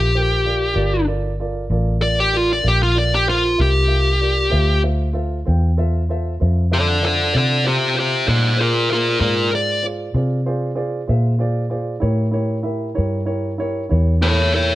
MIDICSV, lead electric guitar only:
0, 0, Header, 1, 2, 480
1, 0, Start_track
1, 0, Key_signature, -1, "minor"
1, 0, Tempo, 625717
1, 588, Time_signature, 12, 3, 24, 8
1, 11315, End_track
2, 0, Start_track
2, 0, Title_t, "Lead electric guitar"
2, 0, Program_c, 0, 29
2, 0, Note_on_c, 0, 67, 75
2, 808, Note_off_c, 0, 67, 0
2, 1551, Note_on_c, 0, 74, 79
2, 1666, Note_off_c, 0, 74, 0
2, 1689, Note_on_c, 0, 67, 82
2, 1817, Note_off_c, 0, 67, 0
2, 1817, Note_on_c, 0, 65, 85
2, 1919, Note_off_c, 0, 65, 0
2, 1939, Note_on_c, 0, 74, 74
2, 2040, Note_off_c, 0, 74, 0
2, 2056, Note_on_c, 0, 67, 76
2, 2159, Note_off_c, 0, 67, 0
2, 2170, Note_on_c, 0, 65, 84
2, 2276, Note_off_c, 0, 65, 0
2, 2287, Note_on_c, 0, 74, 70
2, 2395, Note_off_c, 0, 74, 0
2, 2416, Note_on_c, 0, 67, 75
2, 2519, Note_off_c, 0, 67, 0
2, 2526, Note_on_c, 0, 65, 81
2, 2751, Note_off_c, 0, 65, 0
2, 2772, Note_on_c, 0, 67, 89
2, 3692, Note_off_c, 0, 67, 0
2, 5165, Note_on_c, 0, 69, 76
2, 5170, Note_on_c, 0, 74, 84
2, 5393, Note_off_c, 0, 74, 0
2, 5398, Note_off_c, 0, 69, 0
2, 5409, Note_on_c, 0, 69, 76
2, 5420, Note_on_c, 0, 74, 87
2, 5623, Note_off_c, 0, 69, 0
2, 5638, Note_off_c, 0, 74, 0
2, 5651, Note_on_c, 0, 69, 61
2, 5658, Note_on_c, 0, 74, 81
2, 5864, Note_off_c, 0, 69, 0
2, 5878, Note_off_c, 0, 74, 0
2, 5882, Note_on_c, 0, 67, 79
2, 5889, Note_on_c, 0, 72, 70
2, 6101, Note_off_c, 0, 67, 0
2, 6112, Note_off_c, 0, 72, 0
2, 6126, Note_on_c, 0, 67, 66
2, 6137, Note_on_c, 0, 72, 77
2, 6342, Note_off_c, 0, 67, 0
2, 6349, Note_off_c, 0, 72, 0
2, 6356, Note_on_c, 0, 68, 69
2, 6360, Note_on_c, 0, 72, 64
2, 6577, Note_off_c, 0, 68, 0
2, 6587, Note_off_c, 0, 72, 0
2, 6602, Note_on_c, 0, 65, 71
2, 6609, Note_on_c, 0, 70, 83
2, 6820, Note_off_c, 0, 65, 0
2, 6833, Note_off_c, 0, 70, 0
2, 6848, Note_on_c, 0, 65, 66
2, 6861, Note_on_c, 0, 70, 81
2, 7049, Note_off_c, 0, 65, 0
2, 7055, Note_off_c, 0, 70, 0
2, 7058, Note_on_c, 0, 65, 71
2, 7065, Note_on_c, 0, 70, 76
2, 7287, Note_off_c, 0, 65, 0
2, 7301, Note_off_c, 0, 70, 0
2, 7326, Note_on_c, 0, 74, 76
2, 7552, Note_off_c, 0, 74, 0
2, 10911, Note_on_c, 0, 69, 82
2, 10914, Note_on_c, 0, 73, 86
2, 11145, Note_off_c, 0, 69, 0
2, 11145, Note_off_c, 0, 73, 0
2, 11154, Note_on_c, 0, 69, 77
2, 11166, Note_on_c, 0, 73, 99
2, 11315, Note_off_c, 0, 69, 0
2, 11315, Note_off_c, 0, 73, 0
2, 11315, End_track
0, 0, End_of_file